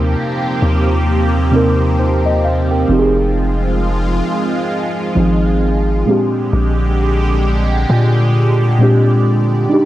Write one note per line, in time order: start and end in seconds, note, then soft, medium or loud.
0.00 0.16 D#2 loud
0.00 0.45 C3 medium
0.00 6.04 F3 medium
0.00 2.86 A#3 medium
0.00 0.46 C4 medium
0.00 7.86 C4 medium
0.00 0.47 D#4 medium
0.00 2.86 G4 loud
0.00 0.47 A#4 medium
0.62 2.86 D#2 loud
1.51 2.13 C3 medium
1.51 2.14 C4 medium
1.51 1.99 D#4 medium
1.56 2.00 A#4 medium
1.99 2.24 D#4 medium
1.99 2.24 C5 medium
2.26 2.44 G4 medium
2.26 2.44 D#5 medium
2.45 2.69 F5 medium
2.71 3.14 A#4 medium
2.71 3.14 G5 medium
2.88 4.22 F1 loud
2.88 4.09 F3 medium
2.88 6.05 G#3 medium
2.88 4.09 C4 medium
2.88 4.10 D#4 medium
2.88 6.05 F4 medium
2.93 2.99 G4 medium
2.99 4.14 G#4 loud
5.15 6.04 G#1 loud
5.15 5.76 F3 medium
5.15 5.77 C4 medium
5.15 5.78 D#4 medium
5.20 5.79 G#4 loud
6.06 7.54 A#2 medium
6.06 9.68 D3 medium
6.06 7.54 G#3 medium
6.06 9.68 G#3 medium
6.06 7.55 C4 medium
6.06 7.55 D4 medium
6.06 9.68 G4 loud
6.10 7.56 G4 loud
6.53 7.86 A#1 loud
7.90 9.67 A#2 loud
7.90 9.85 D5 medium
8.79 9.40 A#2 medium
8.79 9.41 G#3 medium
8.79 9.41 C4 medium
8.79 9.42 D4 medium
8.83 9.42 G4 loud
9.70 9.85 F3 medium
9.70 9.85 G3 medium
9.70 9.85 D4 medium
9.70 9.85 D#4 medium
9.70 9.85 F4 loud
9.74 9.85 G4 loud